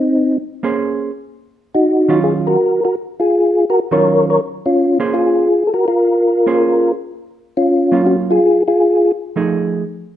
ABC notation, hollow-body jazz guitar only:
X:1
M:4/4
L:1/8
Q:"Swing" 1/4=165
K:Bbm
V:1 name="Hollow-body jazz guitar"
z3 [B,DAc]3 z2 | z3 [E,G,DF]3 z2 | z4 z [E,G,DF]3 | z3 [B,DAc]3 z2 |
z3 [B,DAc]3 z2 | z3 [G,B,DF]3 z2 | z3 [F,=A,E^G]3 z2 |]